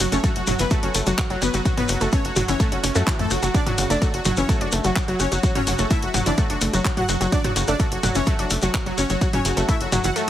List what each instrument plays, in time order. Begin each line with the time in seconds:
0.00 analog synth bass F#1, analog polysynth F#3, synth arpeggio sound F#3 F#4, supersaw synth F#4, open hi-hat
0.12 analog synth bass F#1, synth arpeggio sound A3 A4, analog polysynth C#4, supersaw synth C#5, closed hi-hat, shekere
0.24 analog polysynth F#3, synth arpeggio sound A3 A4, supersaw synth F#4, kick, closed hi-hat, shekere
0.36 analog synth bass F#1, analog polysynth F#3, supersaw synth F#4, closed hi-hat
0.47 analog synth bass F#1, analog polysynth F#3, synth arpeggio sound F#3 F#4, supersaw synth F#4, mid tom, open hi-hat, shekere
0.59 analog synth bass F#1, synth arpeggio sound E3 E4, analog polysynth B3, supersaw synth B4, closed hi-hat, shekere
0.70 analog polysynth F#3, synth arpeggio sound A3 A4, supersaw synth F#4, kick, closed hi-hat, shekere
0.83 analog synth bass F#1, analog polysynth F#3, synth arpeggio sound C#4 C#5, supersaw synth F#4, closed hi-hat
0.95 analog synth bass F#1, synth arpeggio sound A3 A4, open hi-hat, shekere
1.06 analog synth bass F#1, analog polysynth F#3, synth arpeggio sound F#3 F#4, supersaw synth F#4, closed hi-hat, shekere
1.18 supersaw synth F#4, kick, clap, closed hi-hat, shekere
1.30 analog synth bass F#1, analog polysynth F#3, synth arpeggio sound F#3 F#4, supersaw synth F#4, closed hi-hat
1.42 analog synth bass F#1, synth arpeggio sound F#3 F#4, analog polysynth B3, supersaw synth B4, open hi-hat, shekere
1.53 analog synth bass F#1, analog polysynth F#3, synth arpeggio sound F#3 F#4, supersaw synth F#4, closed hi-hat, shekere
1.65 synth arpeggio sound F#3 F#4, analog polysynth F#3, supersaw synth F#4, kick, closed hi-hat, shekere
1.77 analog synth bass F#1, synth arpeggio sound F#3 F#4, analog polysynth B3, supersaw synth B4, closed hi-hat, mid tom
1.88 analog synth bass F#1, synth arpeggio sound F#3 F#4, analog polysynth F#3, supersaw synth F#4, open hi-hat, shekere
2.01 analog synth bass F#1, analog polysynth F#3, synth arpeggio sound A3 A4, supersaw synth F#4, closed hi-hat, shekere
2.12 synth arpeggio sound A3 A4, analog polysynth C#4, supersaw synth C#5, kick, closed hi-hat, shekere
2.25 analog synth bass F#1, analog polysynth F#3, supersaw synth F#4, closed hi-hat
2.36 analog synth bass F#1, synth arpeggio sound F#3 F#4, analog polysynth F#3, supersaw synth F#4, mid tom, open hi-hat, shekere
2.48 analog synth bass F#1, synth arpeggio sound E3 E4, analog polysynth C#4, supersaw synth C#5, closed hi-hat, shekere
2.60 analog polysynth F#3, synth arpeggio sound A3 A4, supersaw synth F#4, kick, closed hi-hat, shekere
2.72 analog synth bass F#1, analog polysynth F#3, synth arpeggio sound C#4 C#5, supersaw synth F#4, closed hi-hat
2.83 analog synth bass F#1, synth arpeggio sound C#4 C#5, open hi-hat, shekere
2.95 analog synth bass F#2, analog polysynth F#3, synth arpeggio sound A3 A4, supersaw synth F#4, closed hi-hat, shekere
3.07 synth arpeggio sound E3 E4, analog polysynth F#3, supersaw synth F#4, kick, clap, closed hi-hat, shekere
3.19 analog synth bass F#2, synth arpeggio sound E3 E4, analog polysynth A3, supersaw synth A4, closed hi-hat, mid tom
3.30 analog synth bass F#1, analog polysynth F#3, synth arpeggio sound F#4 F#5, supersaw synth F#4, open hi-hat, shekere
3.42 analog synth bass F#1, synth arpeggio sound F#3 F#4, analog polysynth F#3, supersaw synth F#4, closed hi-hat, shekere
3.54 synth arpeggio sound F#3 F#4, analog polysynth D4, supersaw synth D5, kick, closed hi-hat, shekere
3.66 analog synth bass F#1, synth arpeggio sound F#3 F#4, analog polysynth F#3, supersaw synth F#4, closed hi-hat, mid tom
3.78 analog synth bass F#1, synth arpeggio sound C#3 C#4, analog polysynth F#3, supersaw synth F#4, open hi-hat, shekere
3.90 analog synth bass F#1, synth arpeggio sound A3 A4, analog polysynth D4, supersaw synth D5, closed hi-hat, shekere
4.02 analog polysynth F#3, synth arpeggio sound A3 A4, supersaw synth F#4, kick, closed hi-hat, shekere
4.14 analog synth bass F#1, analog polysynth F#3, supersaw synth F#4, closed hi-hat
4.25 analog synth bass F#1, synth arpeggio sound F#3 F#4, analog polysynth F#3, supersaw synth F#4, mid tom, open hi-hat, shekere
4.37 analog synth bass F#1, synth arpeggio sound E3 E4, analog polysynth C#4, supersaw synth C#5, closed hi-hat, shekere
4.49 analog polysynth F#3, synth arpeggio sound A3 A4, supersaw synth F#4, kick, closed hi-hat, shekere
4.61 analog synth bass F#1, analog polysynth F#3, synth arpeggio sound D4 D5, supersaw synth F#4, closed hi-hat
4.72 analog synth bass F#1, synth arpeggio sound A3 A4, open hi-hat, shekere
4.84 analog synth bass F#1, synth arpeggio sound F#3 F#4, analog polysynth F#3, supersaw synth F#4, closed hi-hat, shekere
4.96 analog polysynth F#3, kick, clap, closed hi-hat, shekere
5.08 analog synth bass F#1, analog polysynth F#3, synth arpeggio sound F#3 F#4, supersaw synth F#4, closed hi-hat
5.20 analog synth bass F#1, synth arpeggio sound F#3 F#4, analog polysynth C#4, supersaw synth C#5, open hi-hat, shekere
5.32 analog synth bass F#1, synth arpeggio sound F#3 F#4, analog polysynth F#3, supersaw synth F#4, closed hi-hat, shekere
5.43 analog polysynth F#3, synth arpeggio sound F#3 F#4, supersaw synth F#4, kick, closed hi-hat, shekere
5.55 analog synth bass F#1, synth arpeggio sound F#3 F#4, analog polysynth C#4, supersaw synth C#5, closed hi-hat, mid tom
5.67 analog synth bass F#1, synth arpeggio sound C#3 C#4, analog polysynth F#3, supersaw synth F#4, open hi-hat, shekere
5.78 analog synth bass F#1, analog polysynth F#3, synth arpeggio sound A3 A4, supersaw synth F#4, closed hi-hat, shekere
5.90 synth arpeggio sound A3 A4, analog polysynth E4, supersaw synth E5, kick, closed hi-hat, shekere
6.02 analog synth bass F#1, analog polysynth F#3, supersaw synth F#4, closed hi-hat
6.14 analog synth bass F#1, synth arpeggio sound F#3 F#4, analog polysynth F#3, supersaw synth F#4, mid tom, open hi-hat, shekere
6.26 analog synth bass F#1, synth arpeggio sound E3 E4, analog polysynth D4, supersaw synth D5, closed hi-hat, shekere
6.38 analog polysynth F#3, synth arpeggio sound A3 A4, supersaw synth F#4, kick, closed hi-hat, shekere
6.50 analog synth bass F#1, analog polysynth F#3, synth arpeggio sound D4 D5, supersaw synth F#4, closed hi-hat
6.61 analog synth bass F#1, synth arpeggio sound A3 A4, open hi-hat, shekere
6.73 analog synth bass F#1, synth arpeggio sound F#3 F#4, analog polysynth F#3, supersaw synth F#4, closed hi-hat, shekere
6.85 analog polysynth F#3, supersaw synth F#4, kick, clap, closed hi-hat
6.97 analog synth bass F#1, synth arpeggio sound F#3 F#4, analog polysynth F#4, supersaw synth F#5, closed hi-hat, mid tom
7.09 analog synth bass F#1, synth arpeggio sound F#3 F#4, analog polysynth F#3, supersaw synth F#4, open hi-hat, shekere
7.21 analog synth bass F#1, synth arpeggio sound F#3 F#4, analog polysynth F#3, supersaw synth F#4, closed hi-hat, shekere
7.32 synth arpeggio sound F#3 F#4, analog polysynth D4, supersaw synth D5, kick, closed hi-hat, shekere
7.44 analog synth bass F#1, synth arpeggio sound F#3 F#4, analog polysynth F#3, supersaw synth F#4, closed hi-hat, mid tom
7.56 analog synth bass F#1, synth arpeggio sound C#3 C#4, analog polysynth F#3, supersaw synth F#4, open hi-hat, shekere
7.67 analog synth bass F#1, synth arpeggio sound A3 A4, analog polysynth D4, supersaw synth D5, closed hi-hat, shekere
7.79 analog polysynth F#3, synth arpeggio sound A3 A4, supersaw synth F#4, kick, closed hi-hat, shekere
7.92 analog synth bass F#1, analog polysynth F#3, supersaw synth F#4, closed hi-hat
8.03 analog synth bass F#1, analog polysynth F#3, synth arpeggio sound F#3 F#4, supersaw synth F#4, mid tom, open hi-hat, shekere
8.15 analog synth bass F#1, synth arpeggio sound E3 E4, analog polysynth C#4, supersaw synth C#5, closed hi-hat, shekere
8.26 analog polysynth F#3, synth arpeggio sound A3 A4, supersaw synth F#4, kick, closed hi-hat, shekere
8.39 analog synth bass F#1, analog polysynth F#3, synth arpeggio sound D4 D5, supersaw synth F#4, closed hi-hat
8.50 analog synth bass F#1, synth arpeggio sound A3 A4, open hi-hat, shekere
8.61 analog synth bass F#1, analog polysynth F#3, synth arpeggio sound F#3 F#4, supersaw synth F#4, closed hi-hat, shekere
8.74 analog polysynth F#3, kick, clap, closed hi-hat, shekere
8.86 analog synth bass F#1, analog polysynth F#3, synth arpeggio sound F#3 F#4, supersaw synth F#4, closed hi-hat
8.98 analog synth bass F#1, synth arpeggio sound F#3 F#4, analog polysynth C#4, supersaw synth C#5, open hi-hat, shekere
9.10 analog synth bass F#1, synth arpeggio sound F#3 F#4, analog polysynth F#3, supersaw synth F#4, closed hi-hat, shekere
9.21 synth arpeggio sound F#3 F#4, analog polysynth F#3, supersaw synth F#4, kick, closed hi-hat, shekere
9.33 analog synth bass F#1, synth arpeggio sound F#3 F#4, analog polysynth C#4, supersaw synth C#5, closed hi-hat, mid tom
9.45 analog synth bass F#1, synth arpeggio sound C#3 C#4, analog polysynth F#3, supersaw synth F#4, open hi-hat, shekere
9.57 analog synth bass F#1, analog polysynth F#3, synth arpeggio sound A3 A4, supersaw synth F#4, closed hi-hat, shekere
9.69 synth arpeggio sound A3 A4, analog polysynth E4, supersaw synth E5, kick, closed hi-hat, shekere
9.81 analog synth bass F#1, analog polysynth F#3, supersaw synth F#4, closed hi-hat
9.92 analog synth bass F#1, analog polysynth F#3, synth arpeggio sound F#3 F#4, supersaw synth F#4, mid tom, open hi-hat, shekere
10.04 analog synth bass F#1, synth arpeggio sound E3 E4, analog polysynth F#4, supersaw synth F#5, closed hi-hat, shekere
10.16 analog polysynth F#3, synth arpeggio sound A3 A4, supersaw synth F#4, closed hi-hat, shekere